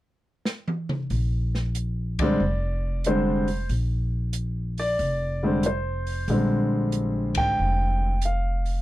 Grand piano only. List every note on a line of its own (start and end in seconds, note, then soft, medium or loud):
2.20 2.39 D3 medium
2.20 2.39 G3 medium
2.20 2.40 G#3 medium
2.20 2.40 C4 medium
2.20 3.01 D5 medium
3.06 3.45 D3 medium
3.06 3.45 G3 medium
3.06 3.45 G#3 medium
3.06 3.45 C4 medium
3.06 3.67 C5 medium
4.79 5.61 D5 medium
5.43 5.62 D3 medium
5.43 5.62 G3 soft
5.43 5.63 G#3 soft
5.43 5.63 C4 medium
5.66 6.26 C5 medium
6.30 8.11 D3 medium
6.30 8.11 G3 soft
6.30 8.11 G#3 medium
6.30 8.12 C4 medium
7.38 8.20 G5 loud
8.25 8.82 F5 medium